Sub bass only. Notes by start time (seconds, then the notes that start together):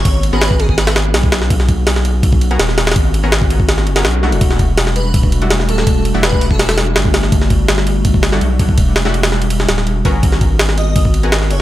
0.05 G#1
0.33 G#1
1.14 B1
2.59 D#1
2.96 G#1
3.87 F#1
4.05 B1
4.32 D#1
4.41 E1
5.69 D1
5.87 E1
6.14 E1
6.96 G1
8.41 B1
8.78 E1
9.69 D1
9.87 E1
10.05 G1
10.23 G#1
11.50 F#1